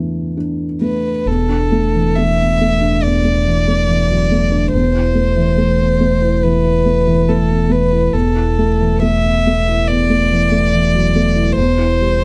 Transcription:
0.00 1.23 E2 soft
0.00 0.64 E3 soft
0.00 0.81 A3 soft
0.00 0.37 D4 soft
0.00 0.34 A4 soft
0.37 1.09 D4 soft
0.81 1.26 A3 soft
0.81 1.28 B4 soft
1.26 4.69 E1 medium
1.26 2.99 E2 soft
1.26 2.18 A4 medium
1.49 1.86 D4 soft
1.72 2.08 A3 soft
1.94 2.30 E3 soft
2.16 2.52 A3 soft
2.16 3.04 E5 medium
2.39 2.60 B3 soft
2.61 2.95 A3 soft
2.81 3.16 D4 soft
3.02 4.70 E2 soft
3.02 4.73 D5 medium
3.25 3.59 A3 soft
3.46 3.80 E3 soft
3.68 4.02 A3 soft
3.88 4.22 E3 soft
4.10 4.31 F#3 soft
4.32 4.66 A3 soft
4.52 4.73 D4 soft
4.73 8.09 E1 medium
4.73 6.40 E2 soft
4.73 6.44 C5 medium
4.94 5.28 E4 soft
5.15 5.49 A3 soft
5.37 5.71 E3 soft
5.58 5.92 A3 soft
5.79 6.01 B3 soft
6.01 6.35 A3 soft
6.22 6.56 E4 soft
6.43 6.78 E3 soft
6.43 7.30 B4 medium
6.64 6.98 E4 soft
6.86 7.20 A3 soft
7.07 7.41 E3 soft
7.29 7.62 A3 soft
7.29 7.73 A4 medium
7.49 7.71 B3 soft
7.70 8.04 A3 soft
7.70 8.15 B4 medium
7.92 8.14 E4 soft
8.13 11.52 E1 medium
8.13 9.84 E2 soft
8.13 9.02 A4 medium
8.36 8.71 E4 soft
8.59 8.94 A3 soft
8.80 9.16 E3 soft
9.02 9.37 A3 soft
9.02 9.90 E5 medium
9.24 9.46 B3 soft
9.47 9.80 A3 soft
9.69 10.01 E4 soft
9.88 11.53 E2 soft
9.88 11.55 D5 medium
10.10 10.43 A3 soft
10.31 10.64 E3 soft
10.52 10.85 A3 soft
10.74 11.07 E3 soft
10.94 11.15 F#3 soft
11.16 11.49 A3 soft
11.36 11.57 E4 soft
11.56 12.24 E1 medium
11.56 12.24 E2 medium
11.56 12.24 C5 medium
11.78 12.12 E4 soft
12.01 12.24 G3 soft

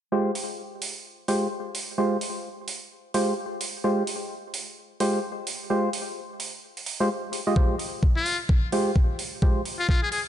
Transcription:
0.12 0.31 G#3 medium
0.12 0.31 F4 medium
0.12 0.31 G4 medium
0.12 0.31 C5 medium
0.35 open hi-hat medium
0.82 open hi-hat loud
1.28 1.47 G#3 medium
1.28 1.47 F4 medium
1.28 1.47 G4 medium
1.28 1.47 C5 medium
1.28 open hi-hat medium
1.75 open hi-hat loud
1.98 2.17 G#3 medium
1.98 2.17 F4 medium
1.98 2.17 G4 medium
1.98 2.17 C5 medium
2.21 open hi-hat loud
2.68 open hi-hat loud
3.14 3.33 G#3 medium
3.14 3.33 F4 medium
3.14 3.33 G4 medium
3.14 3.33 C5 medium
3.14 open hi-hat loud
3.61 open hi-hat loud
3.84 4.03 G#3 medium
3.84 4.03 F4 medium
3.84 4.03 G4 medium
3.84 4.03 C5 medium
4.07 open hi-hat loud
4.54 open hi-hat loud
5.00 5.20 G#3 medium
5.00 5.20 F4 medium
5.00 5.20 G4 medium
5.00 5.20 C5 medium
5.00 open hi-hat loud
5.47 open hi-hat loud
5.70 5.89 G#3 medium
5.70 5.89 F4 medium
5.70 5.89 G4 medium
5.70 5.89 C5 medium
5.93 open hi-hat loud
6.40 open hi-hat loud
6.77 open hi-hat medium
6.86 open hi-hat loud
7.00 7.09 G#3 medium
7.00 7.09 F4 medium
7.00 7.09 G4 medium
7.00 7.09 C5 loud
7.33 open hi-hat loud
7.47 7.55 G#3 medium
7.47 7.55 F4 medium
7.47 7.55 G4 medium
7.47 7.55 D#5 medium
7.56 7.75 G#3 medium
7.56 7.75 F4 medium
7.56 7.75 C5 medium
7.56 kick loud
7.79 open hi-hat medium
8.03 kick loud
8.17 8.37 F4 medium
8.26 open hi-hat loud
8.49 kick loud
8.72 8.92 G#3 medium
8.72 8.92 F4 medium
8.72 8.92 G4 medium
8.72 8.92 C5 medium
8.72 open hi-hat medium
8.96 kick loud
9.19 open hi-hat loud
9.42 9.61 G#3 medium
9.42 9.61 F4 medium
9.42 9.61 G4 medium
9.42 9.61 C5 medium
9.42 kick loud
9.65 open hi-hat medium
9.79 9.87 F4 medium
9.89 10.00 F4 medium
9.89 kick medium
10.03 10.09 G#4 medium
10.12 10.21 G#4 medium
10.12 open hi-hat loud

